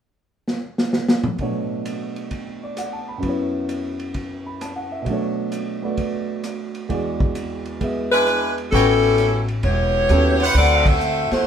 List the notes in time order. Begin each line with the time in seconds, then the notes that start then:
0.48 snare
0.78 snare
0.93 snare
1.08 snare
1.24 mid tom
1.38 B2 F#3 A3 D4, kick, ride
1.42 C#5
1.85 hi-hat pedal, ride
2.16 ride
2.31 kick, ride
2.63 D5
2.77 F#5, cross-stick, hi-hat pedal, ride
2.93 A5
3.08 B5
3.18 F#2 F#3
3.23 B3 E4, kick, ride
3.29 C#5
3.69 hi-hat pedal, ride
4.00 ride
4.14 kick, ride
4.46 B5
4.61 A5, cross-stick, hi-hat pedal, ride
4.76 F#5
4.92 E5
5.02 B2 F#3
5.06 A3 D4, kick, ride
5.13 C#5
5.52 hi-hat pedal, ride
5.82 A3 B3 F#4 D5
5.97 kick, ride
6.44 cross-stick, hi-hat pedal, ride
6.75 ride
6.89 E2 E3 G#3 F#4 D5, kick, ride
7.20 kick
7.35 hi-hat pedal, ride
7.66 ride
7.81 G#3 B3 G#4 E5, kick, ride
8.11 G#3 D4 E4 B4
8.26 cross-stick, hi-hat pedal, ride
8.58 ride
8.72 A1 G3 B3 C#4 E4 F#4 A4 B4 C#5 G5, kick, ride
9.03 ride
9.18 hi-hat pedal, ride
9.48 ride
9.63 E1 B3 E4 G4 C#5, kick, ride
10.09 D#2 G3 B3 C#4 F#4 A4, cross-stick, hi-hat pedal, ride
10.40 E4 B4 C5 F#5, ride
10.55 D2 C4 F#4 A4 D5, kick, ride
10.86 C4 F#4 A4 E5, kick, crash
11.00 hi-hat pedal
11.31 D#2 A3 E4 F#4 C5, snare, ride